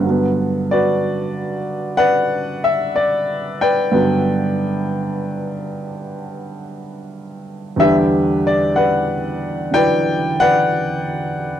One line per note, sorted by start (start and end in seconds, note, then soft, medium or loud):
0.00 3.88 G2 medium
0.00 3.90 D3 soft
0.06 3.91 F#3 soft
0.06 3.91 B3 medium
0.71 2.61 F#4 medium
0.71 1.96 B4 medium
0.71 1.94 D5 medium
1.97 3.61 B4 medium
1.97 2.94 D5 medium
1.97 2.60 F#5 medium
2.64 2.95 E5 medium
2.96 3.10 D5 medium
3.61 6.78 B4 medium
3.61 6.78 D5 medium
3.61 6.78 G5 medium
3.91 7.79 G2 medium
3.91 7.76 D3 soft
3.91 7.79 F#3 soft
3.91 7.79 B3 medium
7.76 11.60 E2 medium
7.76 9.70 D3 soft
7.76 11.60 G3 soft
7.76 7.95 E5 medium
7.81 11.60 D4 medium
7.81 9.69 G4 medium
7.81 8.76 B4 medium
8.47 8.53 D5 medium
8.76 9.74 B4 medium
8.76 9.73 D5 medium
8.76 9.69 F#5 medium
9.71 11.60 D3 soft
9.71 11.60 F#3 soft
9.71 11.60 E4 soft
9.71 10.40 D5 medium
9.71 9.89 G5 loud
9.75 10.40 B4 medium
10.40 11.60 B4 medium
10.40 11.60 D5 medium
10.40 11.60 F#5 loud